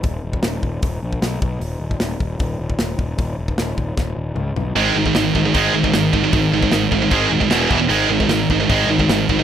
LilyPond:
<<
  \new Staff \with { instrumentName = "Distorted electric guitar" } { \clef bass \time 4/4 \key aes \dorian \tempo 4 = 153 r1 | r1 | r1 | <aes, ees aes>8 <aes, ees>16 <aes, ees>16 <aes, ees>8 <aes, ees>16 <aes, ees>16 <aes, ees aes>8 <aes, ees>16 <aes, ees>16 <aes, ees>8 <aes, ees>16 <aes, ees>16 |
<aes, ees>8 <aes, ees>16 <aes, ees>16 <aes, ees>8 <aes, ees>16 <aes, ees>16 <aes, ees aes>8 <aes, ees>16 <aes, ees>16 <e, b, e>8 <e, b, e>16 <e, b,>16 | <aes, ees aes>8 <aes, ees>16 <aes, ees>16 <aes, ees>8 <aes, ees>16 <aes, ees>16 <aes, ees aes>8 <aes, ees>16 <aes, ees>16 <aes, ees>8 <aes, ees>16 <aes, ees>16 | }
  \new Staff \with { instrumentName = "Distorted electric guitar" } { \clef bass \time 4/4 \key aes \dorian r1 | r1 | r1 | <aes, ees aes>8 <aes, ees>16 <aes, ees>16 <aes, ees>8 <aes, ees>16 <aes, ees>16 <aes, ees aes>8 <aes, ees>16 <aes, ees>16 <aes, ees>8 <aes, ees>16 <aes, ees>16 |
<aes, ees>8 <aes, ees>16 <aes, ees>16 <aes, ees>8 <aes, ees>16 <aes, ees>16 <aes, ees aes>8 <aes, ees>16 <aes, ees>16 <e, b, e>8 <e, b, e>16 <e, b,>16 | <aes, ees aes>8 <aes, ees>16 <aes, ees>16 <aes, ees>8 <aes, ees>16 <aes, ees>16 <aes, ees aes>8 <aes, ees>16 <aes, ees>16 <aes, ees>8 <aes, ees>16 <aes, ees>16 | }
  \new Staff \with { instrumentName = "Picked electric bass" } { \clef bass \time 4/4 \key aes \dorian ees,,8 ees,,8 ees,,8 ees,,8 ees,,8 bes,,8 ces,8 ces,8 | ees,,8 ees,,8 ees,,8 ees,,8 ees,,8 ees,,8 ees,,8 ees,,8 | ees,,8 ees,,8 ees,,8 ees,,8 ees,,8 ees,,8 des,8 ces,8 | aes,,8 aes,,8 aes,,8 aes,,8 aes,,8 aes,,8 aes,,8 aes,,8 |
aes,,8 aes,,8 aes,,8 aes,,8 aes,,8 ees,,8 e,,8 e,,8 | aes,,8 aes,,8 aes,,8 aes,,8 aes,,8 aes,,8 aes,,8 aes,,8 | }
  \new DrumStaff \with { instrumentName = "Drums" } \drummode { \time 4/4 <hho bd>8. bd16 <hho sn>8 bd8 <hho bd>8. bd16 <hho sn>8 bd8 | hho8. bd16 <hho sn>8 bd8 <hho bd>8. bd16 <hho sn>8 bd8 | <hho bd>8. bd16 <hho sn>8 bd8 <bd sn>4 toml8 tomfh8 | hho8. bd16 <hho sn>8 bd8 <hho bd>8. bd16 <hho sn>8 bd8 |
<hho bd>8. bd16 <hho sn>8 bd8 <hho bd>8. bd16 <hho sn>8 bd8 | hho8. bd16 <hho sn>8 bd8 <hho bd>8. bd16 <hho sn>8 bd8 | }
>>